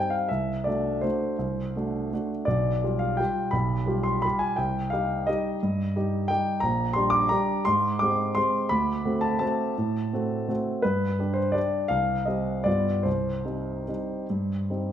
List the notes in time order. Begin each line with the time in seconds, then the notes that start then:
Already playing: G3 C4 D#4 G5
0.10 F5
0.29 C2 E5
0.64 A3 D4 F#4 D5
1.01 A3 D4 F#4 C5
1.39 C2
1.76 A3 D4 F#4
2.13 A3 D4 F#4
2.45 B1 D5
2.84 G3 F4 G4
2.99 F5
3.17 G3 F4 G4 G5
3.51 B1 B5
3.86 G3 F4 G4
4.03 C6
4.22 G3 F4 G4 B5
4.39 G#5
4.56 C2 G5
4.90 G3 D#4 G4 F5
5.27 G3 D#4 G4 D#5
5.63 G2
5.96 G3 D#4 G4
6.28 G3 D#4 G4 G5
6.60 A#1 A#5
6.93 G3 D4 G4 C6
7.10 D6
7.29 G3 D4 G4 A#5
7.65 G#2 C6
7.99 G#3 C4 G4 D6
8.35 G#3 C4 G4 C6
8.69 D2 B5
9.05 A3 C4 F#4
9.21 A5
9.39 A3 C4 F#4 A5
9.78 A2
10.13 A3 C4 F#4
10.48 A3 C4 F#4
10.82 G2 B4
11.19 G3 D4 G4
11.34 C5
11.52 G3 D4 G4 D5
11.88 C2 F5
12.25 G3 C4 G4 D#5
12.64 G2 G3 B3 F4 D5
13.03 C2 C5
13.45 G3 C4 D#4
13.88 G3 C4 D#4
14.30 G2
14.70 G3 C4 D#4